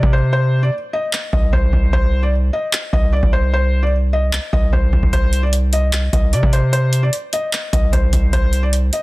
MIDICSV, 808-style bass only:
0, 0, Header, 1, 2, 480
1, 0, Start_track
1, 0, Key_signature, -3, "minor"
1, 0, Tempo, 400000
1, 396, Time_signature, 4, 2, 24, 8
1, 10830, End_track
2, 0, Start_track
2, 0, Title_t, "808-style bass"
2, 0, Program_c, 0, 38
2, 36, Note_on_c, 0, 48, 103
2, 842, Note_off_c, 0, 48, 0
2, 1595, Note_on_c, 0, 36, 105
2, 1826, Note_off_c, 0, 36, 0
2, 1837, Note_on_c, 0, 36, 111
2, 2067, Note_off_c, 0, 36, 0
2, 2076, Note_on_c, 0, 36, 102
2, 2306, Note_off_c, 0, 36, 0
2, 2316, Note_on_c, 0, 36, 110
2, 3007, Note_off_c, 0, 36, 0
2, 3516, Note_on_c, 0, 36, 107
2, 3861, Note_off_c, 0, 36, 0
2, 3875, Note_on_c, 0, 36, 98
2, 5268, Note_off_c, 0, 36, 0
2, 5436, Note_on_c, 0, 36, 106
2, 5666, Note_off_c, 0, 36, 0
2, 5677, Note_on_c, 0, 36, 110
2, 5907, Note_off_c, 0, 36, 0
2, 5916, Note_on_c, 0, 36, 103
2, 6031, Note_off_c, 0, 36, 0
2, 6036, Note_on_c, 0, 36, 100
2, 6151, Note_off_c, 0, 36, 0
2, 6156, Note_on_c, 0, 36, 113
2, 7308, Note_off_c, 0, 36, 0
2, 7356, Note_on_c, 0, 36, 109
2, 7595, Note_on_c, 0, 48, 98
2, 7613, Note_off_c, 0, 36, 0
2, 7710, Note_off_c, 0, 48, 0
2, 7715, Note_on_c, 0, 48, 102
2, 8522, Note_off_c, 0, 48, 0
2, 9276, Note_on_c, 0, 36, 103
2, 9506, Note_off_c, 0, 36, 0
2, 9517, Note_on_c, 0, 36, 107
2, 9747, Note_off_c, 0, 36, 0
2, 9756, Note_on_c, 0, 36, 102
2, 9986, Note_off_c, 0, 36, 0
2, 9996, Note_on_c, 0, 36, 110
2, 10687, Note_off_c, 0, 36, 0
2, 10830, End_track
0, 0, End_of_file